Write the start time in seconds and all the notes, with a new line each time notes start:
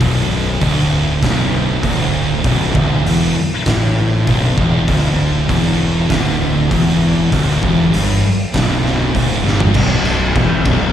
0.01 B0 B1, kick, open hi-hat
0.61 D1 D2, kick, open hi-hat
1.23 B0 B1, kick, snare, open hi-hat
1.83 D1 D2, kick, open hi-hat
2.44 B0 B1, kick, open hi-hat
2.75 D1 D2, kick
3.05 E1 E2, open hi-hat
3.66 A1 A2, kick, snare, open hi-hat
4.27 B0 B1, kick, open hi-hat
4.57 E1 E2, kick
4.87 D1 D2, kick, open hi-hat
5.48 E1 E2, kick, open hi-hat
6.10 D1 D2, kick, snare, open hi-hat
6.71 E1 E2, kick, open hi-hat
7.32 D1 D2, kick, open hi-hat
7.63 E1 E2, kick
7.93 G1 G2, open hi-hat
8.54 B0 B1, kick, snare, open hi-hat
8.86 snare
9.14 D1 D2, kick, open hi-hat
9.45 G1 G2, snare
9.60 floor tom
9.74 B0 B1, kick, crash
10.05 ride
10.36 E1 E2, kick, ride
10.65 B0 B1, kick, ride